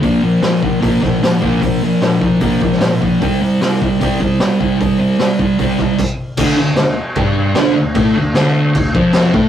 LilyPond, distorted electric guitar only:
\new Staff \with { instrumentName = "Distorted electric guitar" } { \clef bass \time 4/4 \key d \minor \tempo 4 = 151 <bes, f bes>8 <bes, f>8 <bes, f>8 <bes, f>8 <bes, f bes>8 <bes, f>8 <bes, f>8 <bes, f bes>8 | <bes, f>8 <bes, f>8 <bes, f>8 <bes, f>8 <bes, f bes>8 <bes, f>8 <bes, f>8 <bes, f>8 | <c g c'>8 <c g>8 <c g>8 <c g>8 <c g c'>8 <c g>8 <c g>8 <c g c'>8 | <c g>8 <c g>8 <c g>8 <c g>8 <c g c'>8 <c g>8 r4 |
<d, d>8 d,8 d,8 r8 <g, g>4 <d, d>8 d,8 | <a, a>8 d,8 <d, d>4 d,8 <f, f>4 <a, a>8 | }